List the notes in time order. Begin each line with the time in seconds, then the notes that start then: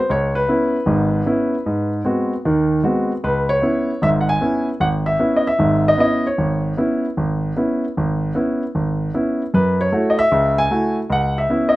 0.10 C#2 C#5
0.35 B4
0.49 B3 C#4 E4
0.86 G#1 G#2
1.26 B3 C#4 E4
1.66 G#2
2.05 G#3 B3 C4 F#4
2.45 D#2 D#3
2.83 G#3 B3 C4 F#4
3.24 C#2 B4
3.49 C#5
3.62 B3 C#4 E4
4.02 G#1 G#2 E5
4.21 F#5
4.29 G#5
4.41 B3 C#4 E4
4.80 G#1 F#5
5.06 E5
5.19 B3 C#4 E4
5.36 D#5
5.47 E5
5.59 G#1 G#2
5.88 D#5
5.98 B3 C#4 E4 D#5
6.27 C#5
6.38 G#1
6.77 B3 C#4 E4
7.17 G#1
7.57 B3 C#4 E4
7.97 G#1
8.35 B3 C#4 E4
8.75 G#1
9.14 B3 C#4 E4
9.54 F#2 B4
9.81 C#5
9.92 A3 E4 F#4
10.10 D#5
10.19 E5
10.31 C#2 C#3
10.58 G#5
10.71 A3 E4 F#4
11.10 C#2 F#5
11.38 E5
11.50 B3 C#4 E4
11.69 D#5